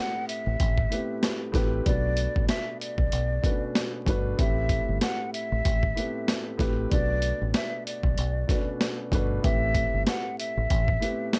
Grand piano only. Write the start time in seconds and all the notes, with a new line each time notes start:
Already playing: A2 A3 C4 G4 B4
0.90 A2 A3 B3 G4 B4
0.98 C4
1.52 A2 A3 C4 G4 B4
1.86 B2 A3 D4 F#4 B4
3.42 B2 A3 C#4 F#4 B4
3.51 D4
4.06 B2 A3 D4 F#4 B4
4.37 A2 A3 C4 G4 B4
5.95 A2 A3 B3 G4 B4
6.03 C4
6.57 A2 A3 C4 G4 B4
6.91 B2 A3 D4 F#4 B4
8.48 B2 A3 C#4 F#4 B4
8.56 D4
9.11 B2 A3 D4 F#4 B4
9.42 A2 A3 C4 G4 B4
11.00 A2 A3 B3 G4 B4
11.08 C4